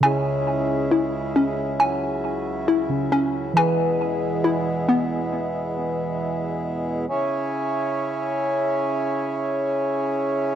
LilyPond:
<<
  \new Staff \with { instrumentName = "Synth keys" } { \time 4/4 \key cis \minor \tempo 4 = 136 <cis cis' e' gis'>1~ | <cis cis' e' gis'>2~ <cis cis' e' gis'>8 <cis cis' e' gis'>4. | <e e' gis' b'>1~ | <e e' gis' b'>1 |
r1 | r1 | }
  \new Staff \with { instrumentName = "Synth pluck" } { \time 4/4 \key cis \minor gis''2 e'4 cis'4 | gis''2 e'4 cis'4 | gis''2 e'4 b4~ | b1 |
r1 | r1 | }
  \new Staff \with { instrumentName = "Harmonium" } { \time 4/4 \key cis \minor e'1~ | e'1~ | e'1~ | e'1 |
<cis cis' e' gis'>1~ | <cis cis' e' gis'>1 | }
  \new Staff \with { instrumentName = "Harmonium" } { \clef bass \time 4/4 \key cis \minor << { gis1 | fis1 | gis1~ | gis1 |
r1 | r1 | } \\ { <cis, cis>1~ | <cis, cis>1 | <e, b,>1~ | <e, b,>1 |
r1 | r1 | } >> }
>>